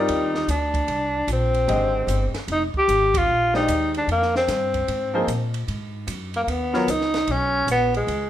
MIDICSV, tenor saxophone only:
0, 0, Header, 1, 2, 480
1, 0, Start_track
1, 0, Tempo, 400000
1, 1054, Time_signature, 4, 2, 24, 8
1, 9958, End_track
2, 0, Start_track
2, 0, Title_t, "Tenor saxophone"
2, 0, Program_c, 0, 66
2, 0, Note_on_c, 0, 63, 84
2, 604, Note_on_c, 0, 62, 90
2, 622, Note_off_c, 0, 63, 0
2, 1549, Note_off_c, 0, 62, 0
2, 1589, Note_on_c, 0, 60, 88
2, 2786, Note_off_c, 0, 60, 0
2, 3023, Note_on_c, 0, 63, 87
2, 3152, Note_off_c, 0, 63, 0
2, 3335, Note_on_c, 0, 67, 100
2, 3811, Note_on_c, 0, 65, 100
2, 3829, Note_off_c, 0, 67, 0
2, 4265, Note_off_c, 0, 65, 0
2, 4272, Note_on_c, 0, 63, 93
2, 4707, Note_off_c, 0, 63, 0
2, 4770, Note_on_c, 0, 62, 83
2, 4907, Note_off_c, 0, 62, 0
2, 4938, Note_on_c, 0, 58, 85
2, 5208, Note_off_c, 0, 58, 0
2, 5242, Note_on_c, 0, 60, 81
2, 6616, Note_off_c, 0, 60, 0
2, 7635, Note_on_c, 0, 58, 86
2, 7677, Note_off_c, 0, 58, 0
2, 7725, Note_on_c, 0, 58, 65
2, 7791, Note_on_c, 0, 59, 83
2, 7809, Note_off_c, 0, 58, 0
2, 8281, Note_on_c, 0, 63, 96
2, 8299, Note_off_c, 0, 59, 0
2, 8778, Note_on_c, 0, 61, 96
2, 8796, Note_off_c, 0, 63, 0
2, 9235, Note_off_c, 0, 61, 0
2, 9254, Note_on_c, 0, 59, 94
2, 9524, Note_off_c, 0, 59, 0
2, 9557, Note_on_c, 0, 56, 74
2, 9958, Note_off_c, 0, 56, 0
2, 9958, End_track
0, 0, End_of_file